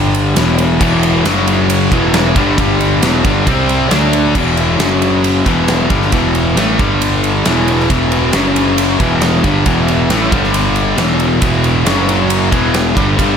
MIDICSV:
0, 0, Header, 1, 4, 480
1, 0, Start_track
1, 0, Key_signature, 1, "minor"
1, 0, Tempo, 442152
1, 882, Time_signature, 4, 2, 24, 8
1, 14513, End_track
2, 0, Start_track
2, 0, Title_t, "Overdriven electric guitar"
2, 0, Program_c, 0, 29
2, 0, Note_on_c, 0, 43, 98
2, 0, Note_on_c, 0, 50, 104
2, 0, Note_on_c, 0, 55, 106
2, 389, Note_off_c, 0, 43, 0
2, 390, Note_off_c, 0, 50, 0
2, 390, Note_off_c, 0, 55, 0
2, 399, Note_on_c, 0, 40, 93
2, 403, Note_on_c, 0, 47, 98
2, 406, Note_on_c, 0, 52, 108
2, 863, Note_off_c, 0, 40, 0
2, 869, Note_off_c, 0, 47, 0
2, 871, Note_off_c, 0, 52, 0
2, 876, Note_on_c, 0, 40, 95
2, 882, Note_on_c, 0, 47, 112
2, 884, Note_on_c, 0, 52, 112
2, 1352, Note_off_c, 0, 40, 0
2, 1355, Note_off_c, 0, 47, 0
2, 1356, Note_off_c, 0, 52, 0
2, 1359, Note_on_c, 0, 42, 91
2, 1361, Note_on_c, 0, 49, 89
2, 1366, Note_on_c, 0, 54, 104
2, 2074, Note_off_c, 0, 42, 0
2, 2075, Note_off_c, 0, 49, 0
2, 2078, Note_off_c, 0, 54, 0
2, 2088, Note_on_c, 0, 40, 89
2, 2090, Note_on_c, 0, 47, 100
2, 2091, Note_on_c, 0, 52, 100
2, 2559, Note_off_c, 0, 40, 0
2, 2560, Note_off_c, 0, 47, 0
2, 2560, Note_off_c, 0, 52, 0
2, 2565, Note_on_c, 0, 43, 78
2, 2569, Note_on_c, 0, 50, 99
2, 2574, Note_on_c, 0, 55, 98
2, 2787, Note_off_c, 0, 43, 0
2, 2795, Note_off_c, 0, 50, 0
2, 2799, Note_off_c, 0, 55, 0
2, 2800, Note_on_c, 0, 43, 99
2, 2808, Note_on_c, 0, 50, 101
2, 2812, Note_on_c, 0, 55, 101
2, 3275, Note_off_c, 0, 43, 0
2, 3279, Note_off_c, 0, 50, 0
2, 3281, Note_off_c, 0, 55, 0
2, 3283, Note_on_c, 0, 40, 95
2, 3287, Note_on_c, 0, 47, 90
2, 3291, Note_on_c, 0, 52, 100
2, 3517, Note_off_c, 0, 40, 0
2, 3519, Note_off_c, 0, 47, 0
2, 3521, Note_off_c, 0, 52, 0
2, 3536, Note_on_c, 0, 43, 98
2, 3544, Note_on_c, 0, 50, 92
2, 3546, Note_on_c, 0, 55, 103
2, 3756, Note_off_c, 0, 55, 0
2, 3762, Note_off_c, 0, 50, 0
2, 3763, Note_off_c, 0, 43, 0
2, 3766, Note_on_c, 0, 48, 92
2, 3769, Note_on_c, 0, 55, 95
2, 3772, Note_on_c, 0, 60, 102
2, 4226, Note_off_c, 0, 48, 0
2, 4226, Note_on_c, 0, 50, 101
2, 4237, Note_off_c, 0, 60, 0
2, 4237, Note_on_c, 0, 62, 99
2, 4238, Note_off_c, 0, 55, 0
2, 4238, Note_on_c, 0, 57, 100
2, 4709, Note_off_c, 0, 50, 0
2, 4714, Note_off_c, 0, 62, 0
2, 4715, Note_off_c, 0, 57, 0
2, 4724, Note_on_c, 0, 40, 94
2, 4731, Note_on_c, 0, 52, 95
2, 4734, Note_on_c, 0, 47, 93
2, 5194, Note_off_c, 0, 40, 0
2, 5198, Note_off_c, 0, 47, 0
2, 5199, Note_on_c, 0, 42, 89
2, 5202, Note_off_c, 0, 52, 0
2, 5202, Note_on_c, 0, 49, 89
2, 5211, Note_on_c, 0, 54, 88
2, 5916, Note_off_c, 0, 42, 0
2, 5918, Note_off_c, 0, 49, 0
2, 5921, Note_on_c, 0, 40, 85
2, 5922, Note_off_c, 0, 54, 0
2, 5926, Note_on_c, 0, 47, 90
2, 5932, Note_on_c, 0, 52, 103
2, 6395, Note_off_c, 0, 40, 0
2, 6396, Note_off_c, 0, 47, 0
2, 6399, Note_on_c, 0, 43, 84
2, 6400, Note_off_c, 0, 52, 0
2, 6401, Note_on_c, 0, 50, 83
2, 6404, Note_on_c, 0, 55, 87
2, 6634, Note_off_c, 0, 43, 0
2, 6637, Note_off_c, 0, 50, 0
2, 6638, Note_on_c, 0, 40, 94
2, 6639, Note_off_c, 0, 55, 0
2, 6644, Note_on_c, 0, 52, 106
2, 6646, Note_on_c, 0, 47, 98
2, 7108, Note_off_c, 0, 52, 0
2, 7115, Note_off_c, 0, 47, 0
2, 7116, Note_off_c, 0, 40, 0
2, 7120, Note_on_c, 0, 45, 86
2, 7121, Note_on_c, 0, 52, 95
2, 7129, Note_on_c, 0, 57, 99
2, 7356, Note_off_c, 0, 45, 0
2, 7357, Note_off_c, 0, 52, 0
2, 7361, Note_off_c, 0, 57, 0
2, 7373, Note_on_c, 0, 43, 88
2, 7375, Note_on_c, 0, 55, 103
2, 7377, Note_on_c, 0, 50, 99
2, 8082, Note_off_c, 0, 43, 0
2, 8084, Note_off_c, 0, 50, 0
2, 8084, Note_off_c, 0, 55, 0
2, 8086, Note_on_c, 0, 40, 86
2, 8088, Note_on_c, 0, 47, 96
2, 8096, Note_on_c, 0, 52, 98
2, 8559, Note_off_c, 0, 40, 0
2, 8560, Note_off_c, 0, 47, 0
2, 8564, Note_off_c, 0, 52, 0
2, 8582, Note_on_c, 0, 40, 91
2, 8582, Note_on_c, 0, 47, 101
2, 8588, Note_on_c, 0, 52, 112
2, 9047, Note_off_c, 0, 40, 0
2, 9047, Note_off_c, 0, 47, 0
2, 9050, Note_off_c, 0, 52, 0
2, 9057, Note_on_c, 0, 42, 92
2, 9060, Note_on_c, 0, 49, 93
2, 9063, Note_on_c, 0, 54, 90
2, 9762, Note_off_c, 0, 42, 0
2, 9765, Note_off_c, 0, 49, 0
2, 9766, Note_on_c, 0, 40, 85
2, 9767, Note_off_c, 0, 54, 0
2, 9777, Note_on_c, 0, 47, 95
2, 9778, Note_on_c, 0, 52, 102
2, 10238, Note_off_c, 0, 40, 0
2, 10242, Note_off_c, 0, 47, 0
2, 10244, Note_off_c, 0, 52, 0
2, 10247, Note_on_c, 0, 43, 96
2, 10247, Note_on_c, 0, 50, 90
2, 10256, Note_on_c, 0, 55, 96
2, 10478, Note_off_c, 0, 50, 0
2, 10479, Note_off_c, 0, 43, 0
2, 10483, Note_off_c, 0, 55, 0
2, 10488, Note_on_c, 0, 40, 93
2, 10495, Note_on_c, 0, 47, 100
2, 10498, Note_on_c, 0, 52, 105
2, 10958, Note_off_c, 0, 40, 0
2, 10960, Note_off_c, 0, 52, 0
2, 10962, Note_off_c, 0, 47, 0
2, 10971, Note_on_c, 0, 45, 81
2, 10973, Note_on_c, 0, 52, 96
2, 10976, Note_on_c, 0, 57, 99
2, 11193, Note_off_c, 0, 45, 0
2, 11197, Note_on_c, 0, 50, 106
2, 11200, Note_on_c, 0, 43, 84
2, 11201, Note_off_c, 0, 52, 0
2, 11202, Note_off_c, 0, 57, 0
2, 11208, Note_on_c, 0, 55, 98
2, 11912, Note_off_c, 0, 50, 0
2, 11913, Note_off_c, 0, 43, 0
2, 11917, Note_off_c, 0, 55, 0
2, 11922, Note_on_c, 0, 40, 90
2, 11925, Note_on_c, 0, 47, 84
2, 11933, Note_on_c, 0, 52, 88
2, 12378, Note_off_c, 0, 40, 0
2, 12380, Note_off_c, 0, 47, 0
2, 12380, Note_off_c, 0, 52, 0
2, 12391, Note_on_c, 0, 40, 87
2, 12393, Note_on_c, 0, 47, 97
2, 12393, Note_on_c, 0, 52, 102
2, 12876, Note_off_c, 0, 40, 0
2, 12876, Note_on_c, 0, 42, 91
2, 12879, Note_off_c, 0, 47, 0
2, 12879, Note_on_c, 0, 49, 98
2, 12880, Note_off_c, 0, 52, 0
2, 12880, Note_on_c, 0, 54, 106
2, 13578, Note_off_c, 0, 42, 0
2, 13581, Note_off_c, 0, 49, 0
2, 13582, Note_on_c, 0, 40, 94
2, 13583, Note_off_c, 0, 54, 0
2, 13585, Note_on_c, 0, 47, 96
2, 13587, Note_on_c, 0, 52, 106
2, 14063, Note_off_c, 0, 40, 0
2, 14064, Note_off_c, 0, 47, 0
2, 14066, Note_off_c, 0, 52, 0
2, 14069, Note_on_c, 0, 43, 96
2, 14079, Note_on_c, 0, 50, 104
2, 14081, Note_on_c, 0, 55, 113
2, 14292, Note_off_c, 0, 43, 0
2, 14293, Note_off_c, 0, 50, 0
2, 14300, Note_off_c, 0, 55, 0
2, 14305, Note_on_c, 0, 43, 98
2, 14306, Note_on_c, 0, 50, 97
2, 14313, Note_on_c, 0, 55, 107
2, 14513, Note_off_c, 0, 43, 0
2, 14513, Note_off_c, 0, 50, 0
2, 14513, Note_off_c, 0, 55, 0
2, 14513, End_track
3, 0, Start_track
3, 0, Title_t, "Picked electric bass"
3, 0, Program_c, 1, 34
3, 0, Note_on_c, 1, 31, 88
3, 355, Note_off_c, 1, 31, 0
3, 403, Note_on_c, 1, 28, 92
3, 849, Note_off_c, 1, 28, 0
3, 880, Note_on_c, 1, 28, 93
3, 1328, Note_off_c, 1, 28, 0
3, 1361, Note_on_c, 1, 30, 91
3, 2039, Note_off_c, 1, 30, 0
3, 2080, Note_on_c, 1, 28, 94
3, 2528, Note_off_c, 1, 28, 0
3, 2562, Note_on_c, 1, 31, 89
3, 2786, Note_off_c, 1, 31, 0
3, 2805, Note_on_c, 1, 31, 101
3, 3251, Note_off_c, 1, 31, 0
3, 3282, Note_on_c, 1, 28, 97
3, 3506, Note_off_c, 1, 28, 0
3, 3530, Note_on_c, 1, 31, 91
3, 3751, Note_off_c, 1, 31, 0
3, 3764, Note_on_c, 1, 36, 92
3, 4211, Note_off_c, 1, 36, 0
3, 4250, Note_on_c, 1, 38, 92
3, 4695, Note_off_c, 1, 38, 0
3, 4726, Note_on_c, 1, 28, 91
3, 5173, Note_off_c, 1, 28, 0
3, 5201, Note_on_c, 1, 30, 85
3, 5881, Note_off_c, 1, 30, 0
3, 5930, Note_on_c, 1, 28, 89
3, 6375, Note_off_c, 1, 28, 0
3, 6413, Note_on_c, 1, 31, 87
3, 6633, Note_off_c, 1, 31, 0
3, 6652, Note_on_c, 1, 28, 89
3, 7096, Note_off_c, 1, 28, 0
3, 7131, Note_on_c, 1, 33, 87
3, 7353, Note_off_c, 1, 33, 0
3, 7380, Note_on_c, 1, 31, 84
3, 8050, Note_off_c, 1, 31, 0
3, 8099, Note_on_c, 1, 28, 87
3, 8540, Note_off_c, 1, 28, 0
3, 8581, Note_on_c, 1, 28, 92
3, 9021, Note_off_c, 1, 28, 0
3, 9058, Note_on_c, 1, 30, 95
3, 9728, Note_off_c, 1, 30, 0
3, 9774, Note_on_c, 1, 28, 89
3, 10216, Note_off_c, 1, 28, 0
3, 10251, Note_on_c, 1, 31, 86
3, 10471, Note_off_c, 1, 31, 0
3, 10491, Note_on_c, 1, 28, 91
3, 10933, Note_off_c, 1, 28, 0
3, 10964, Note_on_c, 1, 33, 89
3, 11187, Note_off_c, 1, 33, 0
3, 11209, Note_on_c, 1, 31, 91
3, 11881, Note_off_c, 1, 31, 0
3, 11919, Note_on_c, 1, 28, 85
3, 12366, Note_off_c, 1, 28, 0
3, 12399, Note_on_c, 1, 28, 91
3, 12845, Note_off_c, 1, 28, 0
3, 12873, Note_on_c, 1, 30, 88
3, 13552, Note_off_c, 1, 30, 0
3, 13594, Note_on_c, 1, 28, 85
3, 14043, Note_off_c, 1, 28, 0
3, 14082, Note_on_c, 1, 31, 85
3, 14304, Note_off_c, 1, 31, 0
3, 14319, Note_on_c, 1, 31, 96
3, 14513, Note_off_c, 1, 31, 0
3, 14513, End_track
4, 0, Start_track
4, 0, Title_t, "Drums"
4, 158, Note_on_c, 9, 51, 72
4, 267, Note_off_c, 9, 51, 0
4, 394, Note_on_c, 9, 51, 99
4, 399, Note_on_c, 9, 38, 110
4, 503, Note_off_c, 9, 51, 0
4, 507, Note_off_c, 9, 38, 0
4, 634, Note_on_c, 9, 51, 78
4, 743, Note_off_c, 9, 51, 0
4, 877, Note_on_c, 9, 36, 103
4, 878, Note_on_c, 9, 49, 94
4, 986, Note_off_c, 9, 36, 0
4, 986, Note_off_c, 9, 49, 0
4, 1119, Note_on_c, 9, 51, 73
4, 1227, Note_off_c, 9, 51, 0
4, 1362, Note_on_c, 9, 51, 105
4, 1366, Note_on_c, 9, 38, 109
4, 1471, Note_off_c, 9, 51, 0
4, 1475, Note_off_c, 9, 38, 0
4, 1601, Note_on_c, 9, 51, 77
4, 1709, Note_off_c, 9, 51, 0
4, 1842, Note_on_c, 9, 51, 105
4, 1951, Note_off_c, 9, 51, 0
4, 2081, Note_on_c, 9, 36, 97
4, 2084, Note_on_c, 9, 51, 64
4, 2190, Note_off_c, 9, 36, 0
4, 2192, Note_off_c, 9, 51, 0
4, 2320, Note_on_c, 9, 51, 87
4, 2325, Note_on_c, 9, 38, 114
4, 2429, Note_off_c, 9, 51, 0
4, 2433, Note_off_c, 9, 38, 0
4, 2560, Note_on_c, 9, 51, 68
4, 2561, Note_on_c, 9, 36, 102
4, 2669, Note_off_c, 9, 51, 0
4, 2670, Note_off_c, 9, 36, 0
4, 2801, Note_on_c, 9, 36, 103
4, 2801, Note_on_c, 9, 51, 87
4, 2910, Note_off_c, 9, 36, 0
4, 2910, Note_off_c, 9, 51, 0
4, 3045, Note_on_c, 9, 51, 67
4, 3154, Note_off_c, 9, 51, 0
4, 3284, Note_on_c, 9, 51, 96
4, 3289, Note_on_c, 9, 38, 115
4, 3393, Note_off_c, 9, 51, 0
4, 3397, Note_off_c, 9, 38, 0
4, 3525, Note_on_c, 9, 36, 104
4, 3525, Note_on_c, 9, 51, 76
4, 3633, Note_off_c, 9, 36, 0
4, 3633, Note_off_c, 9, 51, 0
4, 3766, Note_on_c, 9, 36, 114
4, 3767, Note_on_c, 9, 51, 95
4, 3875, Note_off_c, 9, 36, 0
4, 3875, Note_off_c, 9, 51, 0
4, 4009, Note_on_c, 9, 51, 66
4, 4117, Note_off_c, 9, 51, 0
4, 4245, Note_on_c, 9, 51, 99
4, 4249, Note_on_c, 9, 38, 111
4, 4353, Note_off_c, 9, 51, 0
4, 4358, Note_off_c, 9, 38, 0
4, 4485, Note_on_c, 9, 51, 78
4, 4594, Note_off_c, 9, 51, 0
4, 4722, Note_on_c, 9, 49, 103
4, 4724, Note_on_c, 9, 36, 96
4, 4831, Note_off_c, 9, 49, 0
4, 4832, Note_off_c, 9, 36, 0
4, 4964, Note_on_c, 9, 51, 66
4, 5073, Note_off_c, 9, 51, 0
4, 5208, Note_on_c, 9, 51, 92
4, 5212, Note_on_c, 9, 38, 115
4, 5316, Note_off_c, 9, 51, 0
4, 5321, Note_off_c, 9, 38, 0
4, 5448, Note_on_c, 9, 51, 74
4, 5557, Note_off_c, 9, 51, 0
4, 5691, Note_on_c, 9, 51, 95
4, 5799, Note_off_c, 9, 51, 0
4, 5929, Note_on_c, 9, 36, 88
4, 5929, Note_on_c, 9, 51, 65
4, 6037, Note_off_c, 9, 36, 0
4, 6037, Note_off_c, 9, 51, 0
4, 6167, Note_on_c, 9, 51, 77
4, 6172, Note_on_c, 9, 38, 106
4, 6276, Note_off_c, 9, 51, 0
4, 6280, Note_off_c, 9, 38, 0
4, 6405, Note_on_c, 9, 51, 67
4, 6409, Note_on_c, 9, 36, 103
4, 6514, Note_off_c, 9, 51, 0
4, 6518, Note_off_c, 9, 36, 0
4, 6534, Note_on_c, 9, 38, 34
4, 6642, Note_off_c, 9, 38, 0
4, 6646, Note_on_c, 9, 51, 83
4, 6650, Note_on_c, 9, 36, 95
4, 6754, Note_off_c, 9, 51, 0
4, 6759, Note_off_c, 9, 36, 0
4, 6891, Note_on_c, 9, 51, 64
4, 6999, Note_off_c, 9, 51, 0
4, 7134, Note_on_c, 9, 51, 88
4, 7138, Note_on_c, 9, 38, 114
4, 7242, Note_off_c, 9, 51, 0
4, 7246, Note_off_c, 9, 38, 0
4, 7375, Note_on_c, 9, 51, 66
4, 7376, Note_on_c, 9, 36, 110
4, 7483, Note_off_c, 9, 51, 0
4, 7485, Note_off_c, 9, 36, 0
4, 7616, Note_on_c, 9, 51, 98
4, 7725, Note_off_c, 9, 51, 0
4, 7858, Note_on_c, 9, 51, 65
4, 7966, Note_off_c, 9, 51, 0
4, 8093, Note_on_c, 9, 51, 92
4, 8097, Note_on_c, 9, 38, 106
4, 8201, Note_off_c, 9, 51, 0
4, 8206, Note_off_c, 9, 38, 0
4, 8336, Note_on_c, 9, 51, 67
4, 8445, Note_off_c, 9, 51, 0
4, 8465, Note_on_c, 9, 38, 31
4, 8573, Note_off_c, 9, 38, 0
4, 8577, Note_on_c, 9, 36, 97
4, 8577, Note_on_c, 9, 51, 94
4, 8685, Note_off_c, 9, 51, 0
4, 8686, Note_off_c, 9, 36, 0
4, 8811, Note_on_c, 9, 51, 70
4, 8920, Note_off_c, 9, 51, 0
4, 9043, Note_on_c, 9, 51, 93
4, 9047, Note_on_c, 9, 38, 111
4, 9151, Note_off_c, 9, 51, 0
4, 9155, Note_off_c, 9, 38, 0
4, 9294, Note_on_c, 9, 51, 81
4, 9402, Note_off_c, 9, 51, 0
4, 9531, Note_on_c, 9, 51, 103
4, 9639, Note_off_c, 9, 51, 0
4, 9769, Note_on_c, 9, 51, 63
4, 9771, Note_on_c, 9, 36, 94
4, 9878, Note_off_c, 9, 51, 0
4, 9879, Note_off_c, 9, 36, 0
4, 10004, Note_on_c, 9, 51, 89
4, 10008, Note_on_c, 9, 38, 103
4, 10112, Note_off_c, 9, 51, 0
4, 10117, Note_off_c, 9, 38, 0
4, 10248, Note_on_c, 9, 51, 68
4, 10250, Note_on_c, 9, 36, 100
4, 10356, Note_off_c, 9, 51, 0
4, 10359, Note_off_c, 9, 36, 0
4, 10484, Note_on_c, 9, 51, 83
4, 10488, Note_on_c, 9, 36, 105
4, 10593, Note_off_c, 9, 51, 0
4, 10597, Note_off_c, 9, 36, 0
4, 10729, Note_on_c, 9, 51, 64
4, 10838, Note_off_c, 9, 51, 0
4, 10966, Note_on_c, 9, 51, 86
4, 10970, Note_on_c, 9, 38, 103
4, 11075, Note_off_c, 9, 51, 0
4, 11079, Note_off_c, 9, 38, 0
4, 11207, Note_on_c, 9, 36, 113
4, 11207, Note_on_c, 9, 51, 65
4, 11315, Note_off_c, 9, 36, 0
4, 11315, Note_off_c, 9, 51, 0
4, 11333, Note_on_c, 9, 38, 34
4, 11441, Note_off_c, 9, 38, 0
4, 11444, Note_on_c, 9, 51, 95
4, 11552, Note_off_c, 9, 51, 0
4, 11677, Note_on_c, 9, 51, 59
4, 11785, Note_off_c, 9, 51, 0
4, 11920, Note_on_c, 9, 51, 91
4, 11924, Note_on_c, 9, 38, 110
4, 12028, Note_off_c, 9, 51, 0
4, 12033, Note_off_c, 9, 38, 0
4, 12155, Note_on_c, 9, 51, 64
4, 12263, Note_off_c, 9, 51, 0
4, 12395, Note_on_c, 9, 51, 93
4, 12399, Note_on_c, 9, 36, 99
4, 12503, Note_off_c, 9, 51, 0
4, 12508, Note_off_c, 9, 36, 0
4, 12637, Note_on_c, 9, 51, 65
4, 12745, Note_off_c, 9, 51, 0
4, 12879, Note_on_c, 9, 51, 93
4, 12884, Note_on_c, 9, 38, 101
4, 12988, Note_off_c, 9, 51, 0
4, 12992, Note_off_c, 9, 38, 0
4, 13122, Note_on_c, 9, 51, 75
4, 13231, Note_off_c, 9, 51, 0
4, 13355, Note_on_c, 9, 51, 101
4, 13463, Note_off_c, 9, 51, 0
4, 13596, Note_on_c, 9, 36, 95
4, 13596, Note_on_c, 9, 51, 64
4, 13704, Note_off_c, 9, 36, 0
4, 13704, Note_off_c, 9, 51, 0
4, 13834, Note_on_c, 9, 51, 90
4, 13838, Note_on_c, 9, 38, 101
4, 13942, Note_off_c, 9, 51, 0
4, 13947, Note_off_c, 9, 38, 0
4, 14078, Note_on_c, 9, 36, 96
4, 14083, Note_on_c, 9, 51, 61
4, 14186, Note_off_c, 9, 36, 0
4, 14192, Note_off_c, 9, 51, 0
4, 14318, Note_on_c, 9, 36, 101
4, 14322, Note_on_c, 9, 51, 96
4, 14426, Note_off_c, 9, 36, 0
4, 14431, Note_off_c, 9, 51, 0
4, 14513, End_track
0, 0, End_of_file